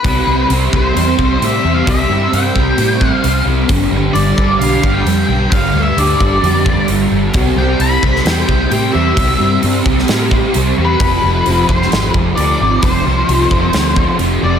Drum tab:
HH |o---o---o---o---|o---o---o---o---|o---o---o---o---|o---o---o---o---|
SD |----------------|----------------|----------------|----------------|
BD |o-----o---o-----|o-----o---o-----|o-----o---o-----|o-----o---o-----|

HH |o---o---o---o---|o---o---o---o---|o---o---o---o---|o---o---o---o---|
SD |-------oo-------|-------oo-------|-------oo-------|--------o-------|
BD |o-----o---o-----|o-----o---o-----|o-----o---o-----|o-----o---o-----|